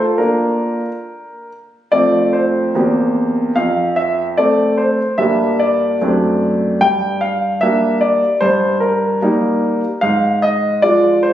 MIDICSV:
0, 0, Header, 1, 2, 480
1, 0, Start_track
1, 0, Key_signature, -1, "major"
1, 0, Tempo, 865801
1, 110, Time_signature, 2, 2, 24, 8
1, 1071, Tempo, 820793
1, 1551, Tempo, 815217
1, 3471, Tempo, 803213
1, 6648, End_track
2, 0, Start_track
2, 0, Title_t, "Grand piano"
2, 0, Program_c, 0, 0
2, 0, Note_on_c, 0, 65, 36
2, 0, Note_on_c, 0, 69, 57
2, 96, Note_off_c, 0, 65, 0
2, 99, Note_on_c, 0, 70, 55
2, 103, Note_on_c, 0, 62, 30
2, 104, Note_off_c, 0, 69, 0
2, 104, Note_on_c, 0, 58, 39
2, 104, Note_on_c, 0, 65, 32
2, 442, Note_off_c, 0, 58, 0
2, 490, Note_off_c, 0, 62, 0
2, 491, Note_off_c, 0, 65, 0
2, 828, Note_off_c, 0, 70, 0
2, 1062, Note_on_c, 0, 74, 73
2, 1068, Note_on_c, 0, 41, 43
2, 1069, Note_on_c, 0, 57, 31
2, 1072, Note_on_c, 0, 60, 34
2, 1075, Note_on_c, 0, 65, 35
2, 1303, Note_on_c, 0, 72, 50
2, 1308, Note_off_c, 0, 74, 0
2, 1527, Note_off_c, 0, 57, 0
2, 1528, Note_off_c, 0, 60, 0
2, 1530, Note_off_c, 0, 65, 0
2, 1535, Note_off_c, 0, 41, 0
2, 1548, Note_on_c, 0, 58, 35
2, 1550, Note_on_c, 0, 40, 51
2, 1552, Note_on_c, 0, 60, 35
2, 1557, Note_on_c, 0, 67, 38
2, 2001, Note_off_c, 0, 72, 0
2, 2004, Note_off_c, 0, 58, 0
2, 2006, Note_off_c, 0, 60, 0
2, 2009, Note_off_c, 0, 67, 0
2, 2014, Note_off_c, 0, 40, 0
2, 2024, Note_on_c, 0, 77, 61
2, 2028, Note_on_c, 0, 41, 45
2, 2263, Note_on_c, 0, 76, 65
2, 2266, Note_off_c, 0, 77, 0
2, 2408, Note_off_c, 0, 76, 0
2, 2493, Note_off_c, 0, 41, 0
2, 2506, Note_on_c, 0, 74, 65
2, 2510, Note_on_c, 0, 57, 35
2, 2512, Note_on_c, 0, 60, 36
2, 2515, Note_on_c, 0, 69, 45
2, 2742, Note_on_c, 0, 72, 53
2, 2747, Note_off_c, 0, 74, 0
2, 2855, Note_off_c, 0, 57, 0
2, 2856, Note_off_c, 0, 60, 0
2, 2858, Note_off_c, 0, 69, 0
2, 2979, Note_on_c, 0, 76, 72
2, 2982, Note_on_c, 0, 43, 45
2, 2985, Note_off_c, 0, 72, 0
2, 2985, Note_on_c, 0, 55, 35
2, 2988, Note_on_c, 0, 58, 36
2, 2991, Note_on_c, 0, 62, 30
2, 3224, Note_off_c, 0, 76, 0
2, 3225, Note_on_c, 0, 74, 57
2, 3444, Note_off_c, 0, 55, 0
2, 3446, Note_off_c, 0, 58, 0
2, 3447, Note_off_c, 0, 62, 0
2, 3452, Note_off_c, 0, 43, 0
2, 3471, Note_on_c, 0, 57, 35
2, 3472, Note_on_c, 0, 42, 44
2, 3474, Note_on_c, 0, 60, 37
2, 3478, Note_on_c, 0, 62, 36
2, 3928, Note_off_c, 0, 57, 0
2, 3930, Note_off_c, 0, 60, 0
2, 3932, Note_off_c, 0, 62, 0
2, 3938, Note_off_c, 0, 42, 0
2, 3947, Note_on_c, 0, 79, 74
2, 3949, Note_off_c, 0, 74, 0
2, 3950, Note_on_c, 0, 43, 43
2, 4185, Note_on_c, 0, 77, 60
2, 4187, Note_off_c, 0, 79, 0
2, 4414, Note_off_c, 0, 43, 0
2, 4424, Note_on_c, 0, 76, 73
2, 4427, Note_off_c, 0, 77, 0
2, 4431, Note_on_c, 0, 55, 37
2, 4432, Note_on_c, 0, 58, 39
2, 4434, Note_on_c, 0, 62, 43
2, 4641, Note_off_c, 0, 76, 0
2, 4663, Note_on_c, 0, 74, 63
2, 4772, Note_off_c, 0, 55, 0
2, 4773, Note_off_c, 0, 58, 0
2, 4774, Note_off_c, 0, 62, 0
2, 4878, Note_off_c, 0, 74, 0
2, 4901, Note_on_c, 0, 72, 68
2, 4907, Note_on_c, 0, 43, 51
2, 5116, Note_off_c, 0, 72, 0
2, 5138, Note_on_c, 0, 70, 57
2, 5368, Note_off_c, 0, 43, 0
2, 5387, Note_on_c, 0, 55, 42
2, 5390, Note_on_c, 0, 58, 41
2, 5391, Note_on_c, 0, 63, 43
2, 5733, Note_off_c, 0, 55, 0
2, 5735, Note_off_c, 0, 58, 0
2, 5735, Note_off_c, 0, 63, 0
2, 5839, Note_off_c, 0, 70, 0
2, 5861, Note_on_c, 0, 77, 67
2, 5869, Note_on_c, 0, 44, 50
2, 6080, Note_off_c, 0, 77, 0
2, 6107, Note_on_c, 0, 75, 67
2, 6335, Note_off_c, 0, 44, 0
2, 6345, Note_on_c, 0, 74, 76
2, 6347, Note_off_c, 0, 75, 0
2, 6352, Note_on_c, 0, 53, 37
2, 6354, Note_on_c, 0, 56, 40
2, 6354, Note_on_c, 0, 65, 38
2, 6565, Note_off_c, 0, 74, 0
2, 6587, Note_on_c, 0, 72, 70
2, 6648, Note_off_c, 0, 53, 0
2, 6648, Note_off_c, 0, 56, 0
2, 6648, Note_off_c, 0, 65, 0
2, 6648, Note_off_c, 0, 72, 0
2, 6648, End_track
0, 0, End_of_file